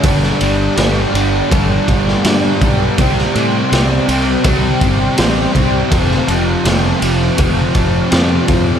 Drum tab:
RD |x-x-x-x-x-x-x-x-|x-x-x-x-x-x-x-x-|x-x-x-x-x-x-x-x-|
SD |-o--o------oo---|-o--o-------o---|-o--o-------o---|
BD |o-------o-o---o-|o-------o-o---o-|o-------o-o---o-|